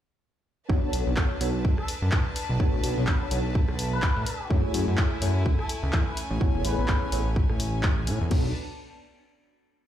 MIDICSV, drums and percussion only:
0, 0, Header, 1, 2, 480
1, 0, Start_track
1, 0, Tempo, 476190
1, 701, Time_signature, 4, 2, 24, 8
1, 9949, End_track
2, 0, Start_track
2, 0, Title_t, "Drums"
2, 700, Note_on_c, 9, 36, 118
2, 801, Note_off_c, 9, 36, 0
2, 939, Note_on_c, 9, 46, 103
2, 1040, Note_off_c, 9, 46, 0
2, 1173, Note_on_c, 9, 39, 126
2, 1180, Note_on_c, 9, 36, 123
2, 1274, Note_off_c, 9, 39, 0
2, 1281, Note_off_c, 9, 36, 0
2, 1420, Note_on_c, 9, 46, 92
2, 1520, Note_off_c, 9, 46, 0
2, 1660, Note_on_c, 9, 36, 119
2, 1761, Note_off_c, 9, 36, 0
2, 1795, Note_on_c, 9, 37, 60
2, 1896, Note_off_c, 9, 37, 0
2, 1899, Note_on_c, 9, 46, 105
2, 2000, Note_off_c, 9, 46, 0
2, 2133, Note_on_c, 9, 39, 126
2, 2140, Note_on_c, 9, 36, 125
2, 2234, Note_off_c, 9, 39, 0
2, 2240, Note_off_c, 9, 36, 0
2, 2377, Note_on_c, 9, 46, 91
2, 2478, Note_off_c, 9, 46, 0
2, 2620, Note_on_c, 9, 36, 125
2, 2721, Note_off_c, 9, 36, 0
2, 2858, Note_on_c, 9, 46, 111
2, 2959, Note_off_c, 9, 46, 0
2, 3092, Note_on_c, 9, 39, 126
2, 3100, Note_on_c, 9, 36, 127
2, 3193, Note_off_c, 9, 39, 0
2, 3201, Note_off_c, 9, 36, 0
2, 3338, Note_on_c, 9, 46, 97
2, 3439, Note_off_c, 9, 46, 0
2, 3580, Note_on_c, 9, 36, 127
2, 3681, Note_off_c, 9, 36, 0
2, 3714, Note_on_c, 9, 37, 61
2, 3815, Note_off_c, 9, 37, 0
2, 3819, Note_on_c, 9, 46, 109
2, 3919, Note_off_c, 9, 46, 0
2, 4053, Note_on_c, 9, 39, 126
2, 4060, Note_on_c, 9, 36, 127
2, 4154, Note_off_c, 9, 39, 0
2, 4161, Note_off_c, 9, 36, 0
2, 4299, Note_on_c, 9, 46, 96
2, 4399, Note_off_c, 9, 46, 0
2, 4540, Note_on_c, 9, 36, 126
2, 4641, Note_off_c, 9, 36, 0
2, 4779, Note_on_c, 9, 46, 114
2, 4880, Note_off_c, 9, 46, 0
2, 5014, Note_on_c, 9, 39, 124
2, 5020, Note_on_c, 9, 36, 127
2, 5114, Note_off_c, 9, 39, 0
2, 5121, Note_off_c, 9, 36, 0
2, 5260, Note_on_c, 9, 46, 99
2, 5360, Note_off_c, 9, 46, 0
2, 5501, Note_on_c, 9, 36, 125
2, 5602, Note_off_c, 9, 36, 0
2, 5635, Note_on_c, 9, 37, 57
2, 5736, Note_off_c, 9, 37, 0
2, 5740, Note_on_c, 9, 46, 113
2, 5840, Note_off_c, 9, 46, 0
2, 5974, Note_on_c, 9, 39, 124
2, 5981, Note_on_c, 9, 36, 127
2, 6075, Note_off_c, 9, 39, 0
2, 6082, Note_off_c, 9, 36, 0
2, 6220, Note_on_c, 9, 46, 96
2, 6321, Note_off_c, 9, 46, 0
2, 6461, Note_on_c, 9, 36, 126
2, 6562, Note_off_c, 9, 36, 0
2, 6699, Note_on_c, 9, 46, 113
2, 6800, Note_off_c, 9, 46, 0
2, 6933, Note_on_c, 9, 39, 120
2, 6940, Note_on_c, 9, 36, 125
2, 7034, Note_off_c, 9, 39, 0
2, 7041, Note_off_c, 9, 36, 0
2, 7179, Note_on_c, 9, 46, 96
2, 7280, Note_off_c, 9, 46, 0
2, 7421, Note_on_c, 9, 36, 126
2, 7521, Note_off_c, 9, 36, 0
2, 7555, Note_on_c, 9, 37, 58
2, 7656, Note_off_c, 9, 37, 0
2, 7659, Note_on_c, 9, 46, 111
2, 7759, Note_off_c, 9, 46, 0
2, 7892, Note_on_c, 9, 39, 119
2, 7900, Note_on_c, 9, 36, 127
2, 7993, Note_off_c, 9, 39, 0
2, 8001, Note_off_c, 9, 36, 0
2, 8136, Note_on_c, 9, 46, 95
2, 8237, Note_off_c, 9, 46, 0
2, 8377, Note_on_c, 9, 49, 90
2, 8380, Note_on_c, 9, 36, 117
2, 8477, Note_off_c, 9, 49, 0
2, 8480, Note_off_c, 9, 36, 0
2, 9949, End_track
0, 0, End_of_file